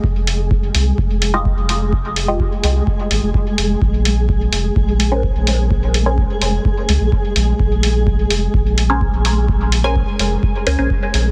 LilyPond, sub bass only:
\new Staff \with { instrumentName = "Sub bass" } { \clef bass \time 4/4 \key bes \dorian \tempo 4 = 127 f,,4. c,16 r16 f,,4~ f,,16 f,,8.~ | f,,4~ f,,16 r16 c,16 r8. aes,,16 f,,16 r8 f,,16 r16 | bes,,4. f,,16 r16 bes,,4~ bes,,16 bes,,8.~ | bes,,4~ bes,,16 r16 f,,16 r8. des,16 bes,,16 r8 bes,,16 r16 |
bes,,4. f,,16 r16 bes,,4~ bes,,16 bes,,8.~ | bes,,4~ bes,,16 r16 f,,16 r8. des,16 bes,,16 r8 bes,,16 r16 | }